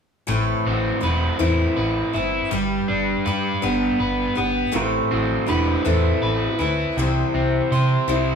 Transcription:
0.27 A1 A2 E3 A3 C4 E4 B4
0.66 A1 C4
1.01 E1 A3 C4 E4 B4
1.39 E2 A2 E3 A3 C4 E4 B4
1.77 A1 B4
2.13 G1 A3 C4 E4 B4
2.51 G1 G3 D4 G4 B4
2.88 G1 D4
3.26 G2 G3 D4 G4 B4
3.62 G1 G3 B3 D4 G4 B4
4.00 G1 B4
4.35 G1 B3 D4 G4 B4
4.72 A1 A2 E3 A3 C4 E4
4.76 G4 C5
5.11 A1 C4 E4 A4
5.46 E1 A3 C4 D4 E4 G4 B4
5.85 E2 A2 E3 A3 C4 E4 A4 B4
6.22 A1 B4
6.59 D2 A3 C4 E4 B4
6.97 C2 C3 E3 G3 C4 E4 C5
7.34 C2 C4
7.71 C3 G3 C4 E4 C5
8.08 C2 C3 E3 G3 C4 E4 C5

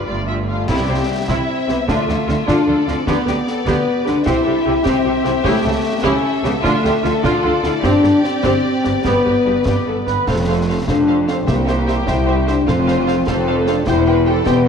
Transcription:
0.06 G1 G2 G3 A3 F4 D5
0.27 G3 F4 E5
0.47 G3 F4 F5
0.67 C2 C3 G3 E4 G4 E5, concert bass drum, snare, crash
0.88 C2 C3 E4 C5
1.28 C2 C3 C4 E4, concert bass drum, snare
1.68 C2 C3 B3 E4 G4, snare
1.88 D2 D3 A3 D4 F4, concert bass drum, snare
2.07 D2 D3 F4 A4, snare
2.27 D2 D3 F4, snare
2.47 D2 D3 D4 F4 A4 D5, concert bass drum, snare
2.67 D2 D3 F4 A4
2.86 D2 D3 C4 F4, snare
3.07 D2 D3 B3 G4 B4, concert bass drum, snare
3.26 D2 D3 G4, snare
3.47 A4, snare
3.66 D2 D3 B3 G4 B4, concert bass drum, snare
4.05 D2 D3 D4 G4, snare
4.25 C2 C3 C4 E4 G4 C5 E5, concert bass drum, snare
4.45 C2 C3 G4 A4
4.65 C2 C3 E4 G4
4.85 C2 C3 C4 G4, concert bass drum, snare
5.05 C2 C3 G4
5.24 C2 C3 E4 G4, snare
5.44 C#2 C#3 A3 E4 G4, concert bass drum, snare
5.63 C#2 C#3 G4 A4
6.03 C#2 C#3 C#4 E4 G4 A4, concert bass drum, snare
6.43 C#2 C#3 B3 G4, snare
6.63 D2 D3 A3 D4 F4, concert bass drum, snare
6.83 D2 D3 F4 G4 A4, snare
7.03 D2 D3 F4 A4, snare
7.23 D2 D3 D4 F4 D5, concert bass drum, snare
7.43 D2 D3 F4 A4
7.63 D2 D3 E4 F4, snare
7.83 G1 G2 C4 D4 G4, concert bass drum, snare
8.03 G1 G2 G4, snare
8.24 C4, snare
8.43 G1 G2 C4 G4, concert bass drum, snare
8.83 G1 G2 D4 G4, snare
9.03 G1 G2 B3 G4 B4, concert bass drum, snare
9.25 G1 G2 G4
9.45 G1 G2 D4 G4
9.65 G1 G2 B3 G4, concert bass drum, snare
9.87 G1 G2 A4
10.07 G1 G2 B4, snare
10.27 F1 F2 A3 A4 C5 F5, concert bass drum, snare, crash
10.47 A4 C5 F5
10.67 A4 C5 F5
10.87 F1 F2 D4 A4 C5 F5, concert bass drum, snare
11.07 A4 C5 F5
11.27 C4 A4 C5 F5, snare
11.46 C2 C3 A#3 G4 C5 E5, concert bass drum, snare
11.66 G4 C5 E5, snare
11.86 G4 C5 E5, snare
12.07 C2 E4 G4 C5 E5, concert bass drum, snare
12.27 G4 C5 E5
12.47 D4 G4 C5 E5, snare
12.67 F1 F2 C4 F4 A4 C5 F5, concert bass drum, snare
12.87 A4 C5 F5, snare
13.07 A4 C5 F5, snare
13.27 F1 F2 C4 A4 C5 F5, concert bass drum, snare
13.47 A4 C5 F5
13.67 D4 A4 C5 F5, snare
13.86 E1 E2 E4 G4 C5 G5, concert bass drum, snare
14.06 G4 B4 C5 G5
14.26 G4 A4 C5 G5
14.45 E1 E2 B3 G4 C5 G5, concert bass drum, snare

